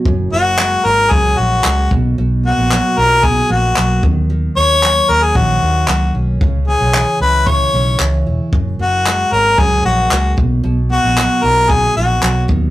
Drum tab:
CP |--x---x-|--x---x-|--x---x-|--x---x-|
BD |o---o--o|----o--o|----o---|o---o---|

CP |--x---x-|--x---x-|
BD |o---o--o|----o--o|